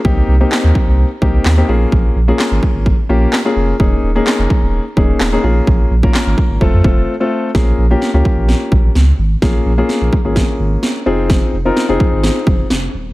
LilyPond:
<<
  \new Staff \with { instrumentName = "Grand piano" } { \time 4/4 \key bes \dorian \tempo 4 = 128 <bes c' ees' g'>8 r16 <bes c' ees' g'>4. r16 <bes c' ees' g'>8 r16 <bes c' ees' g'>16 <bes des' f' aes'>8~ | <bes des' f' aes'>8 r16 <bes des' f' aes'>4. r16 <bes des' f' g'>8 r16 <bes des' f' aes'>8 r16 | <bes des' ees' aes'>8 r16 <bes des' ees' aes'>4. r16 <bes des' ees' aes'>8 r16 <bes des' ees' aes'>16 <bes des' f' aes'>8~ | <bes des' f' aes'>8 r16 <bes des' f' bes'>4~ <bes des' f' bes'>16 <a c' f' a'>8 <a c' f' a'>8 r16 <a c' f' a'>8 r16 |
<bes des' f' aes'>8 r16 <bes des' f' g'>8 <bes des' f' g'>4.~ <bes des' f' g'>16 r4 | <bes des' f' aes'>8 r16 <bes des' f' aes'>8. r16 <bes des' f' aes'>4.~ <bes des' f' aes'>16 <c' ees' f' aes'>8~ | <c' ees' f' aes'>8 r16 <c' ees' f' bes'>8 <c' ees' f' aes'>4.~ <c' ees' f' aes'>16 r4 | }
  \new Staff \with { instrumentName = "Sub bass" } { \clef bass \time 4/4 \key bes \dorian c,8 c,8 r16 ees,16 r16 c,8 r16 c,8 ees,8 bes,,8 | bes,,8 bes,,8 r16 aes,,16 r16 aes,,8 r16 bes,,8 r8 f,,8 | ees,,8 ees,,8 r16 f,,16 r16 ees,,8 r16 ees,,8 ees,,8 bes,,8 | bes,,8 bes,,8 r16 aes,,16 r16 aes,,16 f,,16 f,16 f,,16 f,,16 r4 |
bes,,8 bes,,8 r16 des,16 r16 bes,,8 r16 bes,,8 des,8 aes,,8 | bes,,8 bes,,8 r16 bes,,16 r16 aes,,8 r16 aes,,8 r8 f,,8~ | f,,8 f,,8 r16 f,,16 r16 aes,,8 r16 f,,8 f,,8 ees,,8 | }
  \new DrumStaff \with { instrumentName = "Drums" } \drummode { \time 4/4 bd4 <hc sn>8 bd8 r8 bd8 <hc sn>4 | bd4 <hc sn>8 bd8 bd4 <hc sn>4 | bd4 <hc sn>8 bd8 r8 bd8 <hc sn>4 | bd8. bd16 <hc sn>8 bd8 bd8 bd8 r4 |
<bd sn>4 sn8 bd8 sn8 bd8 sn4 | <bd sn>4 sn8 bd8 <bd sn>4 sn4 | <bd sn>4 sn8 bd8 sn8 bd8 sn4 | }
>>